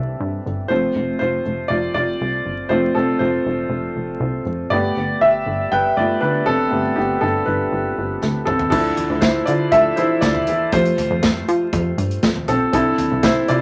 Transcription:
0.00 0.16 C2 medium
0.00 0.66 E3 soft
0.00 0.67 C4 soft
0.00 0.67 D4 medium
0.00 0.72 G4 medium
0.00 0.41 D5 medium
0.00 0.72 E5 medium
0.20 0.41 G2 medium
0.46 0.66 G1 medium
0.68 0.91 F1 medium
0.68 1.41 F3 soft
0.68 1.42 A3 soft
0.68 1.42 C4 medium
0.68 1.17 F4 medium
0.68 1.16 C5 medium
0.95 1.16 F1 medium
1.19 1.41 F1 medium
1.19 1.68 F4 medium
1.19 1.66 C5 medium
1.46 1.66 F1 medium
1.68 1.91 F1 medium
1.68 1.94 F4 medium
1.68 1.93 D5 medium
1.94 2.16 F1 medium
1.94 2.67 F4 medium
1.94 2.66 D5 medium
2.21 2.42 C2 medium
2.46 2.66 G1 medium
2.69 2.90 F1 loud
2.69 4.67 F3 soft
2.69 4.67 A3 soft
2.69 2.95 C4 medium
2.69 2.94 F4 medium
2.69 2.93 C5 medium
2.95 3.16 F1 medium
2.95 3.20 C4 medium
2.95 3.21 A4 medium
3.19 3.41 F1 medium
3.19 4.42 F4 medium
3.19 4.41 C5 medium
3.46 3.66 F1 loud
3.69 3.91 F1 medium
3.96 4.16 F1 medium
4.20 4.41 C2 medium
4.45 4.66 F1 medium
4.70 4.91 G1 loud
4.70 5.95 G3 soft
4.70 5.96 A3 soft
4.70 5.96 B3 medium
4.70 5.18 G4 medium
4.70 5.17 D5 medium
4.96 5.17 G1 loud
5.21 5.42 G1 medium
5.21 5.69 G4 medium
5.21 5.68 E5 medium
5.46 5.67 G1 medium
5.72 5.92 G1 medium
5.72 5.95 B4 medium
5.72 5.95 G5 medium
5.96 6.17 G1 medium
5.96 6.19 G3 soft
5.96 6.20 A3 soft
5.96 6.20 B3 soft
5.96 6.20 F4 medium
5.96 6.20 D5 medium
6.21 6.43 D2 medium
6.21 6.45 D4 medium
6.21 6.47 B4 medium
6.46 6.68 F1 medium
6.46 6.93 C4 medium
6.46 6.98 A4 medium
6.70 6.92 G1 loud
6.70 7.42 G3 soft
6.70 7.43 A3 soft
6.70 6.96 B3 medium
6.96 7.18 G1 medium
6.96 7.20 B3 medium
6.96 7.22 G4 medium
7.21 7.43 G1 medium
7.21 7.45 D4 medium
7.21 7.45 A4 medium
7.46 7.68 G1 medium
7.46 8.43 D4 soft
7.46 8.43 B4 medium
7.72 7.93 G1 loud
7.98 8.18 G1 medium
8.22 8.43 D2 medium
8.22 snare soft
8.45 8.68 C2 medium
8.45 8.71 C4 medium
8.45 8.69 A4 medium
8.45 mid tom medium
8.59 floor tom medium
8.70 8.93 D2 loud
8.70 9.05 F3 soft
8.70 9.19 D4 medium
8.70 9.05 E4 medium
8.70 9.18 A4 medium
8.70 kick medium
8.70 crash medium
8.97 closed hi-hat medium
8.97 floor tom medium
9.10 9.20 D2 loud
9.21 9.43 D2 loud
9.21 9.45 E4 medium
9.21 9.47 C5 medium
9.21 kick loud
9.21 snare loud
9.21 closed hi-hat medium
9.46 9.68 D3 medium
9.46 9.71 F4 medium
9.46 9.72 D5 medium
9.46 closed hi-hat medium
9.72 9.93 D2 medium
9.72 9.95 F3 soft
9.72 9.95 D4 soft
9.72 9.95 E4 soft
9.72 9.96 A4 medium
9.72 9.98 E5 medium
9.72 kick medium
9.72 closed hi-hat medium
9.96 10.18 E2 medium
9.96 10.21 E4 medium
9.96 10.23 C5 medium
9.96 closed hi-hat medium
10.21 10.43 D2 medium
10.21 10.69 F4 medium
10.21 10.73 D5 medium
10.21 kick medium
10.21 snare medium
10.21 closed hi-hat medium
10.35 floor tom medium
10.47 10.69 E2 medium
10.47 closed hi-hat medium
10.72 10.93 F2 loud
10.72 12.69 G3 soft
10.72 12.69 A3 soft
10.72 12.70 F4 medium
10.72 12.53 C5 medium
10.72 kick medium
10.72 closed hi-hat medium
10.85 closed hi-hat soft
10.98 closed hi-hat medium
10.98 floor tom medium
11.10 11.21 F2 medium
11.22 11.43 F2 medium
11.22 kick loud
11.22 snare loud
11.22 closed hi-hat medium
11.48 11.69 F3 loud
11.48 closed hi-hat medium
11.73 11.94 F2 loud
11.73 kick medium
11.73 closed hi-hat medium
11.98 12.18 G2 medium
11.98 closed hi-hat medium
12.11 closed hi-hat soft
12.23 12.44 F2 loud
12.23 kick medium
12.23 snare medium
12.23 closed hi-hat medium
12.36 floor tom medium
12.48 12.69 B1 medium
12.48 12.71 C4 medium
12.48 12.72 A4 medium
12.48 closed hi-hat medium
12.73 12.94 C2 loud
12.73 13.20 C4 medium
12.73 13.06 D4 soft
12.73 13.07 E4 medium
12.73 13.25 A4 medium
12.73 kick medium
12.73 closed hi-hat medium
12.98 closed hi-hat medium
12.98 floor tom medium
13.12 13.21 C2 medium
13.23 13.44 C2 loud
13.23 13.47 E4 medium
13.23 13.49 C5 medium
13.23 kick loud
13.23 snare loud
13.23 closed hi-hat medium
13.48 13.62 C3 loud
13.48 13.62 F4 medium
13.48 13.62 D5 medium
13.48 closed hi-hat medium

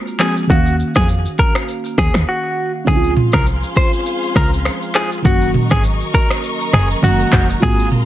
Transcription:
0.00 0.15 G#3 medium
0.00 0.16 A#3 medium
0.00 0.17 C4 medium
0.00 0.15 F4 medium
0.00 0.17 F#4 medium
0.07 shaker soft
0.19 0.49 F3 medium
0.19 0.49 G#3 medium
0.19 0.48 A#3 soft
0.19 0.50 C4 medium
0.19 0.47 F#4 medium
0.19 0.34 G#4 medium
0.19 finger snap medium
0.19 cross-stick loud
0.19 clap loud
0.19 open hi-hat medium
0.37 shaker medium
0.47 0.83 D#2 loud
0.47 2.82 D#3 medium
0.47 2.83 A#3 medium
0.47 2.83 C#4 medium
0.47 2.83 F#4 medium
0.47 0.75 F#4 loud
0.47 kick loud
0.47 shaker medium
0.52 2.85 F5 medium
0.66 shaker medium
0.80 shaker soft
0.95 1.27 F2 medium
0.95 1.07 G#4 medium
0.95 finger snap medium
0.95 kick loud
0.95 cross-stick loud
0.95 shaker medium
1.08 shaker medium
1.25 shaker medium
1.38 1.53 A#4 medium
1.38 kick loud
1.38 shaker medium
1.55 finger snap medium
1.55 cross-stick loud
1.55 shaker medium
1.68 shaker medium
1.85 shaker medium
1.98 2.10 D#2 loud
1.98 2.12 G#4 medium
1.98 finger snap medium
1.98 kick loud
1.98 cross-stick loud
1.98 shaker medium
2.14 2.24 D#2 loud
2.14 finger snap medium
2.14 cross-stick loud
2.14 shaker medium
2.29 2.72 F#4 medium
2.85 3.21 C#2 loud
2.85 5.20 F3 medium
2.85 5.21 G#3 medium
2.85 5.21 C4 medium
2.85 5.20 C#4 medium
2.85 5.23 G#4 medium
2.85 3.13 G#4 loud
2.85 5.22 C5 medium
2.85 5.22 F5 medium
2.85 5.22 C6 medium
2.85 kick loud
2.85 shaker loud
2.90 2.96 D#4 medium
2.96 5.25 F4 medium
3.04 shaker medium
3.17 mid tom loud
3.32 3.65 C2 medium
3.32 3.45 A#4 medium
3.32 finger snap loud
3.32 kick loud
3.32 cross-stick loud
3.32 shaker medium
3.46 shaker medium
3.63 shaker medium
3.76 3.91 C5 medium
3.76 kick loud
3.76 shaker medium
3.93 shaker medium
4.06 shaker medium
4.23 shaker medium
4.36 4.69 C#2 loud
4.36 4.50 A#4 medium
4.36 finger snap medium
4.36 kick loud
4.36 cross-stick loud
4.36 shaker medium
4.53 shaker medium
4.65 finger snap medium
4.65 cross-stick medium
4.65 shaker medium
4.82 shaker soft
4.95 5.09 G#4 medium
4.95 finger snap medium
4.95 cross-stick loud
4.95 clap loud
4.95 open hi-hat medium
5.12 shaker medium
5.22 5.59 F#1 loud
5.22 6.98 D#3 medium
5.22 6.99 F#3 medium
5.22 7.00 A#3 medium
5.22 7.00 C#4 medium
5.22 5.50 F#4 loud
5.22 7.60 A#4 medium
5.22 7.60 D#5 medium
5.22 8.05 A#5 medium
5.22 7.60 C#6 loud
5.22 kick loud
5.22 shaker loud
5.27 7.01 F#4 medium
5.41 shaker medium
5.54 mid tom loud
5.70 6.03 G#1 medium
5.70 5.83 G#4 medium
5.70 finger snap medium
5.70 kick loud
5.70 cross-stick loud
5.70 shaker medium
5.84 shaker medium
6.01 shaker medium
6.14 6.28 A#4 medium
6.14 kick loud
6.14 shaker medium
6.30 finger snap medium
6.30 cross-stick loud
6.30 shaker medium
6.43 shaker medium
6.60 shaker medium
6.73 6.95 F#1 loud
6.73 6.88 G#4 medium
6.73 finger snap medium
6.73 cross-stick loud
6.73 shaker medium
6.91 shaker medium
7.02 7.25 F#1 loud
7.02 7.62 D#3 medium
7.02 7.62 F#3 soft
7.02 7.10 G#3 soft
7.02 7.63 C#4 soft
7.02 7.47 F#4 medium
7.02 7.63 F#4 medium
7.02 shaker medium
7.09 7.61 A#3 medium
7.20 shaker soft
7.33 7.55 F1 medium
7.33 finger snap medium
7.33 kick medium
7.33 cross-stick loud
7.33 clap loud
7.33 open hi-hat medium
7.50 shaker medium
7.60 7.96 G#1 loud
7.60 8.05 G#3 medium
7.60 8.05 A#3 medium
7.60 8.05 C4 medium
7.60 8.05 F4 medium
7.60 7.88 G#4 loud
7.60 8.05 A#4 medium
7.60 8.05 F5 medium
7.60 8.05 C6 medium
7.60 kick loud
7.60 shaker loud
7.65 8.05 F#4 medium
7.79 shaker medium
7.92 mid tom loud

